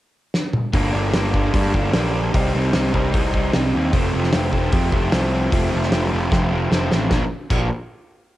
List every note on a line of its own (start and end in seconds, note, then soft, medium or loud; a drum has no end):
0.34 snare medium
0.53 mid tom medium
0.73 0.92 G1 medium
0.73 1.14 G2 medium
0.73 1.11 D3 medium
0.73 0.95 G3 loud
0.73 0.93 A#3 loud
0.73 0.93 D4 loud
0.73 kick loud
0.73 open hi-hat medium
0.93 1.12 G1 medium
0.93 1.14 G3 medium
0.93 1.13 A#3 medium
0.93 1.14 D4 medium
1.13 1.49 G1 medium
1.13 1.33 D3 medium
1.13 1.34 G3 medium
1.13 1.32 A#3 medium
1.13 1.33 D4 medium
1.13 snare loud
1.13 open hi-hat medium
1.33 1.74 G2 medium
1.33 1.52 D3 medium
1.33 1.54 G3 medium
1.33 1.53 A#3 medium
1.33 1.53 D4 medium
1.33 kick medium
1.53 1.72 G2 medium
1.53 1.92 D3 medium
1.53 1.74 G3 medium
1.53 1.72 A#3 medium
1.53 1.72 D4 medium
1.53 kick loud
1.53 open hi-hat medium
1.73 1.92 G1 medium
1.73 1.94 G3 medium
1.73 1.94 A#3 medium
1.73 1.94 D4 medium
1.73 kick medium
1.93 2.29 A#1 medium
1.93 2.32 G2 medium
1.93 2.32 D3 medium
1.93 2.14 G3 medium
1.93 2.13 A#3 medium
1.93 2.12 D4 medium
1.93 snare loud
1.93 open hi-hat medium
2.13 2.33 G3 medium
2.13 2.33 A#3 medium
2.13 2.32 D4 medium
2.33 2.52 C2 medium
2.33 2.72 C3 medium
2.33 2.54 G3 loud
2.33 2.54 C4 loud
2.33 2.52 D#4 loud
2.33 kick loud
2.33 open hi-hat medium
2.53 2.72 C2 medium
2.53 2.73 G3 medium
2.53 2.73 C4 medium
2.53 2.73 D#4 medium
2.73 2.92 C2 medium
2.73 2.92 C3 medium
2.73 2.93 G3 medium
2.73 2.92 C4 medium
2.73 2.91 D#4 medium
2.73 snare loud
2.73 open hi-hat medium
2.92 3.12 C2 medium
2.92 3.11 C3 medium
2.92 3.13 G3 medium
2.92 3.13 C4 medium
2.92 3.13 D#4 medium
2.92 kick medium
3.12 3.49 C2 medium
3.12 3.52 C3 medium
3.12 3.36 G3 medium
3.12 3.35 C4 medium
3.12 3.33 D#4 medium
3.12 kick loud
3.12 open hi-hat medium
3.34 3.54 G3 medium
3.34 3.55 C4 medium
3.34 3.54 D#4 medium
3.34 kick medium
3.53 3.72 C2 medium
3.53 3.91 C3 loud
3.53 3.75 G3 medium
3.53 3.73 C4 loud
3.53 3.72 D#4 medium
3.53 snare loud
3.53 open hi-hat medium
3.73 3.92 D#2 medium
3.73 3.92 G3 medium
3.73 3.93 C4 medium
3.73 3.92 D#4 medium
3.92 4.11 F1 loud
3.92 4.54 F2 loud
3.92 4.32 C3 loud
3.92 4.15 F3 medium
3.92 4.14 A3 loud
3.92 4.12 C4 loud
3.92 kick loud
3.92 open hi-hat medium
4.13 4.31 F1 loud
4.13 4.33 F3 medium
4.13 4.34 A3 medium
4.13 4.34 C4 medium
4.23 snare soft
4.33 4.68 F1 medium
4.33 4.53 C3 medium
4.33 4.54 F3 medium
4.33 4.53 A3 medium
4.33 4.53 C4 medium
4.33 snare loud
4.33 open hi-hat medium
4.53 4.93 F2 medium
4.53 4.71 C3 medium
4.53 4.72 F3 medium
4.53 4.72 A3 medium
4.53 4.72 C4 medium
4.53 kick medium
4.72 4.90 F2 medium
4.72 5.12 C3 medium
4.72 4.93 F3 medium
4.72 4.91 A3 medium
4.72 4.90 C4 medium
4.72 kick loud
4.72 open hi-hat medium
4.91 5.10 F1 medium
4.91 5.12 F3 medium
4.91 5.12 A3 medium
4.91 5.13 C4 medium
4.91 kick medium
5.12 5.48 C2 loud
5.12 5.51 F2 medium
5.12 5.51 C3 loud
5.12 5.33 F3 loud
5.12 5.31 A3 loud
5.12 5.30 C4 loud
5.12 snare loud
5.12 open hi-hat medium
5.31 5.52 F3 medium
5.31 5.52 A3 medium
5.31 5.52 C4 medium
5.52 5.70 F1 medium
5.52 5.92 F2 medium
5.52 5.90 C3 loud
5.52 5.72 F3 loud
5.52 5.71 A3 loud
5.52 5.69 C4 loud
5.52 kick loud
5.52 open hi-hat medium
5.71 5.91 F1 medium
5.71 5.90 F3 medium
5.71 5.91 A3 medium
5.71 5.92 C4 medium
5.82 snare soft
5.91 6.10 F1 medium
5.91 6.11 C3 medium
5.91 6.11 F3 medium
5.91 6.11 A3 medium
5.91 6.10 C4 medium
5.91 snare loud
5.91 open hi-hat medium
6.11 6.30 F1 medium
6.11 6.52 F2 medium
6.11 6.29 C3 medium
6.11 6.30 F3 medium
6.11 6.31 A3 medium
6.11 6.31 C4 medium
6.30 6.67 F1 medium
6.30 6.70 C3 medium
6.30 6.52 F3 medium
6.30 6.51 A3 medium
6.30 6.50 C4 medium
6.30 kick loud
6.30 snare medium
6.51 6.71 F3 medium
6.51 6.71 A3 medium
6.51 6.72 C4 medium
6.71 6.89 F1 medium
6.71 7.10 F2 medium
6.71 7.10 C3 loud
6.71 6.93 F3 loud
6.71 6.92 A3 loud
6.71 6.91 C4 loud
6.71 snare medium
6.92 7.09 A1 medium
6.92 7.10 F3 medium
6.92 7.11 A3 medium
6.92 7.10 C4 medium
6.92 snare loud
7.10 7.22 A#1 medium
7.10 7.22 A#2 loud
7.10 7.23 F3 loud
7.10 7.23 A#3 loud
7.10 7.23 D4 loud
7.10 kick loud
7.10 snare medium
7.50 7.69 A#1 medium
7.50 7.66 A#2 loud
7.50 7.67 F3 loud
7.50 7.67 A#3 loud
7.50 7.67 D4 loud
7.50 kick loud
7.50 crash medium